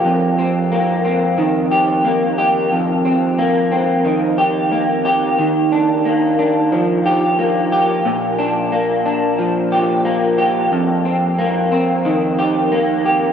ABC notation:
X:1
M:4/4
L:1/8
Q:1/4=90
K:Fmix
V:1 name="Clean electric guitar"
F,, C B, C E, G B, G | F,, C B, C E, G B, G | E, D B, D F, G B, G | B,, D B, D F, G B, G |
F,, C B, C E, G B, G |]